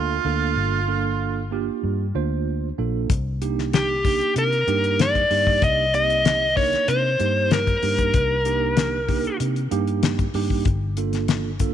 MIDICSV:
0, 0, Header, 1, 6, 480
1, 0, Start_track
1, 0, Tempo, 630915
1, 433, Time_signature, 4, 2, 24, 8
1, 8931, End_track
2, 0, Start_track
2, 0, Title_t, "Lead electric guitar"
2, 0, Program_c, 0, 29
2, 2849, Note_on_c, 0, 67, 73
2, 3292, Note_off_c, 0, 67, 0
2, 3336, Note_on_c, 0, 70, 80
2, 3814, Note_on_c, 0, 74, 87
2, 3820, Note_off_c, 0, 70, 0
2, 4286, Note_off_c, 0, 74, 0
2, 4289, Note_on_c, 0, 75, 99
2, 4516, Note_off_c, 0, 75, 0
2, 4525, Note_on_c, 0, 75, 96
2, 4995, Note_off_c, 0, 75, 0
2, 4998, Note_on_c, 0, 73, 93
2, 5236, Note_on_c, 0, 72, 98
2, 5244, Note_off_c, 0, 73, 0
2, 5728, Note_off_c, 0, 72, 0
2, 5731, Note_on_c, 0, 70, 77
2, 7130, Note_off_c, 0, 70, 0
2, 8931, End_track
3, 0, Start_track
3, 0, Title_t, "Harmonica"
3, 0, Program_c, 1, 22
3, 0, Note_on_c, 1, 65, 102
3, 1125, Note_off_c, 1, 65, 0
3, 8931, End_track
4, 0, Start_track
4, 0, Title_t, "Tine electric piano"
4, 0, Program_c, 2, 4
4, 0, Note_on_c, 2, 58, 84
4, 0, Note_on_c, 2, 62, 82
4, 0, Note_on_c, 2, 65, 77
4, 0, Note_on_c, 2, 69, 104
4, 115, Note_off_c, 2, 58, 0
4, 115, Note_off_c, 2, 62, 0
4, 117, Note_off_c, 2, 65, 0
4, 118, Note_off_c, 2, 69, 0
4, 190, Note_on_c, 2, 58, 83
4, 191, Note_on_c, 2, 65, 76
4, 194, Note_on_c, 2, 62, 76
4, 194, Note_on_c, 2, 69, 82
4, 595, Note_off_c, 2, 58, 0
4, 596, Note_off_c, 2, 65, 0
4, 597, Note_off_c, 2, 62, 0
4, 597, Note_off_c, 2, 69, 0
4, 671, Note_on_c, 2, 58, 74
4, 673, Note_on_c, 2, 62, 70
4, 673, Note_on_c, 2, 65, 67
4, 677, Note_on_c, 2, 69, 74
4, 1076, Note_off_c, 2, 58, 0
4, 1077, Note_off_c, 2, 62, 0
4, 1077, Note_off_c, 2, 65, 0
4, 1079, Note_off_c, 2, 69, 0
4, 1151, Note_on_c, 2, 58, 70
4, 1156, Note_on_c, 2, 62, 66
4, 1158, Note_on_c, 2, 65, 65
4, 1159, Note_on_c, 2, 67, 82
4, 1556, Note_off_c, 2, 58, 0
4, 1558, Note_off_c, 2, 62, 0
4, 1559, Note_off_c, 2, 65, 0
4, 1560, Note_off_c, 2, 67, 0
4, 1635, Note_on_c, 2, 58, 68
4, 1637, Note_on_c, 2, 65, 67
4, 1638, Note_on_c, 2, 62, 69
4, 1640, Note_on_c, 2, 72, 87
4, 2038, Note_off_c, 2, 58, 0
4, 2039, Note_off_c, 2, 65, 0
4, 2040, Note_off_c, 2, 62, 0
4, 2041, Note_off_c, 2, 72, 0
4, 2117, Note_on_c, 2, 58, 75
4, 2119, Note_on_c, 2, 62, 69
4, 2122, Note_on_c, 2, 65, 60
4, 2122, Note_on_c, 2, 69, 75
4, 2356, Note_off_c, 2, 58, 0
4, 2357, Note_off_c, 2, 62, 0
4, 2359, Note_off_c, 2, 65, 0
4, 2359, Note_off_c, 2, 69, 0
4, 2599, Note_on_c, 2, 58, 71
4, 2600, Note_on_c, 2, 62, 67
4, 2600, Note_on_c, 2, 63, 69
4, 2602, Note_on_c, 2, 67, 81
4, 3000, Note_off_c, 2, 58, 0
4, 3001, Note_off_c, 2, 62, 0
4, 3001, Note_off_c, 2, 63, 0
4, 3002, Note_off_c, 2, 67, 0
4, 3079, Note_on_c, 2, 58, 61
4, 3080, Note_on_c, 2, 62, 57
4, 3082, Note_on_c, 2, 63, 55
4, 3084, Note_on_c, 2, 67, 68
4, 3481, Note_off_c, 2, 58, 0
4, 3481, Note_off_c, 2, 62, 0
4, 3482, Note_off_c, 2, 63, 0
4, 3483, Note_off_c, 2, 67, 0
4, 3556, Note_on_c, 2, 58, 69
4, 3559, Note_on_c, 2, 62, 70
4, 3560, Note_on_c, 2, 63, 71
4, 3562, Note_on_c, 2, 67, 79
4, 3959, Note_off_c, 2, 58, 0
4, 3961, Note_off_c, 2, 62, 0
4, 3961, Note_off_c, 2, 63, 0
4, 3962, Note_off_c, 2, 67, 0
4, 4036, Note_on_c, 2, 58, 66
4, 4036, Note_on_c, 2, 62, 58
4, 4040, Note_on_c, 2, 63, 62
4, 4040, Note_on_c, 2, 67, 74
4, 4439, Note_off_c, 2, 58, 0
4, 4439, Note_off_c, 2, 62, 0
4, 4441, Note_off_c, 2, 63, 0
4, 4441, Note_off_c, 2, 67, 0
4, 4515, Note_on_c, 2, 58, 58
4, 4518, Note_on_c, 2, 60, 59
4, 4519, Note_on_c, 2, 63, 55
4, 4522, Note_on_c, 2, 67, 69
4, 4918, Note_off_c, 2, 58, 0
4, 4920, Note_off_c, 2, 60, 0
4, 4920, Note_off_c, 2, 63, 0
4, 4922, Note_off_c, 2, 67, 0
4, 4993, Note_on_c, 2, 62, 57
4, 4994, Note_on_c, 2, 58, 66
4, 4996, Note_on_c, 2, 63, 63
4, 4998, Note_on_c, 2, 70, 73
4, 5397, Note_off_c, 2, 62, 0
4, 5398, Note_off_c, 2, 58, 0
4, 5399, Note_off_c, 2, 63, 0
4, 5399, Note_off_c, 2, 70, 0
4, 5472, Note_on_c, 2, 58, 66
4, 5474, Note_on_c, 2, 62, 57
4, 5476, Note_on_c, 2, 63, 63
4, 5478, Note_on_c, 2, 67, 67
4, 5876, Note_off_c, 2, 58, 0
4, 5877, Note_off_c, 2, 62, 0
4, 5878, Note_off_c, 2, 63, 0
4, 5879, Note_off_c, 2, 67, 0
4, 5954, Note_on_c, 2, 58, 61
4, 5957, Note_on_c, 2, 62, 58
4, 5957, Note_on_c, 2, 63, 63
4, 5958, Note_on_c, 2, 67, 63
4, 6357, Note_off_c, 2, 58, 0
4, 6358, Note_off_c, 2, 62, 0
4, 6358, Note_off_c, 2, 63, 0
4, 6359, Note_off_c, 2, 67, 0
4, 6432, Note_on_c, 2, 62, 72
4, 6433, Note_on_c, 2, 58, 75
4, 6435, Note_on_c, 2, 63, 66
4, 6435, Note_on_c, 2, 67, 78
4, 6835, Note_off_c, 2, 58, 0
4, 6835, Note_off_c, 2, 62, 0
4, 6837, Note_off_c, 2, 63, 0
4, 6837, Note_off_c, 2, 67, 0
4, 6909, Note_on_c, 2, 58, 71
4, 6910, Note_on_c, 2, 62, 65
4, 6913, Note_on_c, 2, 63, 69
4, 6915, Note_on_c, 2, 67, 81
4, 7313, Note_off_c, 2, 58, 0
4, 7313, Note_off_c, 2, 62, 0
4, 7315, Note_off_c, 2, 63, 0
4, 7316, Note_off_c, 2, 67, 0
4, 7390, Note_on_c, 2, 58, 93
4, 7391, Note_on_c, 2, 62, 81
4, 7394, Note_on_c, 2, 63, 76
4, 7396, Note_on_c, 2, 67, 99
4, 7793, Note_off_c, 2, 58, 0
4, 7794, Note_off_c, 2, 62, 0
4, 7795, Note_off_c, 2, 63, 0
4, 7796, Note_off_c, 2, 67, 0
4, 7871, Note_on_c, 2, 58, 76
4, 7872, Note_on_c, 2, 62, 80
4, 7873, Note_on_c, 2, 63, 74
4, 7875, Note_on_c, 2, 67, 93
4, 8110, Note_off_c, 2, 58, 0
4, 8111, Note_off_c, 2, 62, 0
4, 8111, Note_off_c, 2, 63, 0
4, 8112, Note_off_c, 2, 67, 0
4, 8349, Note_on_c, 2, 58, 75
4, 8351, Note_on_c, 2, 62, 67
4, 8353, Note_on_c, 2, 69, 77
4, 8354, Note_on_c, 2, 65, 69
4, 8751, Note_off_c, 2, 58, 0
4, 8753, Note_off_c, 2, 62, 0
4, 8753, Note_off_c, 2, 69, 0
4, 8754, Note_off_c, 2, 65, 0
4, 8829, Note_on_c, 2, 58, 79
4, 8830, Note_on_c, 2, 65, 65
4, 8831, Note_on_c, 2, 62, 74
4, 8833, Note_on_c, 2, 69, 88
4, 8931, Note_off_c, 2, 58, 0
4, 8931, Note_off_c, 2, 62, 0
4, 8931, Note_off_c, 2, 65, 0
4, 8931, Note_off_c, 2, 69, 0
4, 8931, End_track
5, 0, Start_track
5, 0, Title_t, "Fingered electric bass"
5, 0, Program_c, 3, 33
5, 0, Note_on_c, 3, 38, 87
5, 137, Note_off_c, 3, 38, 0
5, 188, Note_on_c, 3, 38, 87
5, 403, Note_off_c, 3, 38, 0
5, 425, Note_on_c, 3, 31, 92
5, 1281, Note_off_c, 3, 31, 0
5, 1396, Note_on_c, 3, 43, 80
5, 1608, Note_off_c, 3, 43, 0
5, 1635, Note_on_c, 3, 38, 84
5, 2061, Note_off_c, 3, 38, 0
5, 2118, Note_on_c, 3, 34, 77
5, 2329, Note_off_c, 3, 34, 0
5, 2357, Note_on_c, 3, 36, 83
5, 3208, Note_off_c, 3, 36, 0
5, 3315, Note_on_c, 3, 48, 82
5, 3528, Note_off_c, 3, 48, 0
5, 3556, Note_on_c, 3, 43, 90
5, 3981, Note_off_c, 3, 43, 0
5, 4037, Note_on_c, 3, 43, 78
5, 4249, Note_off_c, 3, 43, 0
5, 4277, Note_on_c, 3, 36, 92
5, 5127, Note_off_c, 3, 36, 0
5, 5235, Note_on_c, 3, 48, 86
5, 5448, Note_off_c, 3, 48, 0
5, 5477, Note_on_c, 3, 43, 89
5, 5901, Note_off_c, 3, 43, 0
5, 5957, Note_on_c, 3, 43, 82
5, 6168, Note_off_c, 3, 43, 0
5, 6195, Note_on_c, 3, 36, 91
5, 7044, Note_off_c, 3, 36, 0
5, 7153, Note_on_c, 3, 48, 74
5, 7365, Note_off_c, 3, 48, 0
5, 7391, Note_on_c, 3, 43, 82
5, 7816, Note_off_c, 3, 43, 0
5, 7866, Note_on_c, 3, 43, 76
5, 8080, Note_off_c, 3, 43, 0
5, 8109, Note_on_c, 3, 31, 94
5, 8931, Note_off_c, 3, 31, 0
5, 8931, End_track
6, 0, Start_track
6, 0, Title_t, "Drums"
6, 2357, Note_on_c, 9, 36, 107
6, 2357, Note_on_c, 9, 42, 80
6, 2433, Note_off_c, 9, 36, 0
6, 2433, Note_off_c, 9, 42, 0
6, 2600, Note_on_c, 9, 42, 51
6, 2676, Note_off_c, 9, 42, 0
6, 2727, Note_on_c, 9, 38, 34
6, 2803, Note_off_c, 9, 38, 0
6, 2842, Note_on_c, 9, 42, 80
6, 2846, Note_on_c, 9, 38, 100
6, 2918, Note_off_c, 9, 42, 0
6, 2922, Note_off_c, 9, 38, 0
6, 3079, Note_on_c, 9, 36, 83
6, 3079, Note_on_c, 9, 46, 68
6, 3155, Note_off_c, 9, 36, 0
6, 3155, Note_off_c, 9, 46, 0
6, 3204, Note_on_c, 9, 42, 42
6, 3280, Note_off_c, 9, 42, 0
6, 3318, Note_on_c, 9, 42, 76
6, 3394, Note_off_c, 9, 42, 0
6, 3444, Note_on_c, 9, 42, 36
6, 3520, Note_off_c, 9, 42, 0
6, 3559, Note_on_c, 9, 42, 54
6, 3635, Note_off_c, 9, 42, 0
6, 3682, Note_on_c, 9, 42, 37
6, 3758, Note_off_c, 9, 42, 0
6, 3800, Note_on_c, 9, 42, 81
6, 3804, Note_on_c, 9, 38, 99
6, 3876, Note_off_c, 9, 42, 0
6, 3880, Note_off_c, 9, 38, 0
6, 3920, Note_on_c, 9, 36, 70
6, 3920, Note_on_c, 9, 42, 34
6, 3996, Note_off_c, 9, 36, 0
6, 3996, Note_off_c, 9, 42, 0
6, 4037, Note_on_c, 9, 46, 80
6, 4113, Note_off_c, 9, 46, 0
6, 4160, Note_on_c, 9, 36, 74
6, 4236, Note_off_c, 9, 36, 0
6, 4275, Note_on_c, 9, 42, 81
6, 4277, Note_on_c, 9, 36, 108
6, 4351, Note_off_c, 9, 42, 0
6, 4353, Note_off_c, 9, 36, 0
6, 4518, Note_on_c, 9, 42, 56
6, 4594, Note_off_c, 9, 42, 0
6, 4642, Note_on_c, 9, 42, 38
6, 4718, Note_off_c, 9, 42, 0
6, 4757, Note_on_c, 9, 42, 84
6, 4761, Note_on_c, 9, 38, 112
6, 4833, Note_off_c, 9, 42, 0
6, 4838, Note_off_c, 9, 38, 0
6, 4997, Note_on_c, 9, 36, 75
6, 4997, Note_on_c, 9, 46, 70
6, 5073, Note_off_c, 9, 36, 0
6, 5073, Note_off_c, 9, 46, 0
6, 5119, Note_on_c, 9, 42, 41
6, 5124, Note_on_c, 9, 38, 34
6, 5196, Note_off_c, 9, 42, 0
6, 5200, Note_off_c, 9, 38, 0
6, 5235, Note_on_c, 9, 42, 77
6, 5311, Note_off_c, 9, 42, 0
6, 5474, Note_on_c, 9, 42, 57
6, 5550, Note_off_c, 9, 42, 0
6, 5713, Note_on_c, 9, 42, 73
6, 5718, Note_on_c, 9, 38, 101
6, 5789, Note_off_c, 9, 42, 0
6, 5794, Note_off_c, 9, 38, 0
6, 5837, Note_on_c, 9, 36, 78
6, 5837, Note_on_c, 9, 42, 35
6, 5913, Note_off_c, 9, 36, 0
6, 5913, Note_off_c, 9, 42, 0
6, 5954, Note_on_c, 9, 46, 83
6, 6030, Note_off_c, 9, 46, 0
6, 6073, Note_on_c, 9, 42, 37
6, 6076, Note_on_c, 9, 36, 72
6, 6149, Note_off_c, 9, 42, 0
6, 6152, Note_off_c, 9, 36, 0
6, 6190, Note_on_c, 9, 42, 75
6, 6194, Note_on_c, 9, 36, 110
6, 6266, Note_off_c, 9, 42, 0
6, 6270, Note_off_c, 9, 36, 0
6, 6431, Note_on_c, 9, 42, 55
6, 6507, Note_off_c, 9, 42, 0
6, 6670, Note_on_c, 9, 42, 79
6, 6675, Note_on_c, 9, 38, 109
6, 6746, Note_off_c, 9, 42, 0
6, 6751, Note_off_c, 9, 38, 0
6, 6912, Note_on_c, 9, 36, 75
6, 6912, Note_on_c, 9, 46, 71
6, 6988, Note_off_c, 9, 36, 0
6, 6988, Note_off_c, 9, 46, 0
6, 7033, Note_on_c, 9, 42, 39
6, 7109, Note_off_c, 9, 42, 0
6, 7152, Note_on_c, 9, 42, 75
6, 7228, Note_off_c, 9, 42, 0
6, 7275, Note_on_c, 9, 42, 36
6, 7351, Note_off_c, 9, 42, 0
6, 7390, Note_on_c, 9, 42, 54
6, 7467, Note_off_c, 9, 42, 0
6, 7513, Note_on_c, 9, 42, 36
6, 7589, Note_off_c, 9, 42, 0
6, 7629, Note_on_c, 9, 42, 85
6, 7633, Note_on_c, 9, 38, 107
6, 7705, Note_off_c, 9, 42, 0
6, 7710, Note_off_c, 9, 38, 0
6, 7751, Note_on_c, 9, 42, 37
6, 7752, Note_on_c, 9, 36, 65
6, 7827, Note_off_c, 9, 42, 0
6, 7828, Note_off_c, 9, 36, 0
6, 7867, Note_on_c, 9, 46, 77
6, 7943, Note_off_c, 9, 46, 0
6, 7991, Note_on_c, 9, 36, 69
6, 8067, Note_off_c, 9, 36, 0
6, 8104, Note_on_c, 9, 42, 81
6, 8107, Note_on_c, 9, 36, 100
6, 8180, Note_off_c, 9, 42, 0
6, 8183, Note_off_c, 9, 36, 0
6, 8344, Note_on_c, 9, 42, 58
6, 8420, Note_off_c, 9, 42, 0
6, 8467, Note_on_c, 9, 42, 37
6, 8471, Note_on_c, 9, 38, 32
6, 8543, Note_off_c, 9, 42, 0
6, 8548, Note_off_c, 9, 38, 0
6, 8584, Note_on_c, 9, 42, 77
6, 8589, Note_on_c, 9, 38, 99
6, 8660, Note_off_c, 9, 42, 0
6, 8665, Note_off_c, 9, 38, 0
6, 8822, Note_on_c, 9, 42, 68
6, 8825, Note_on_c, 9, 36, 82
6, 8898, Note_off_c, 9, 42, 0
6, 8901, Note_off_c, 9, 36, 0
6, 8931, End_track
0, 0, End_of_file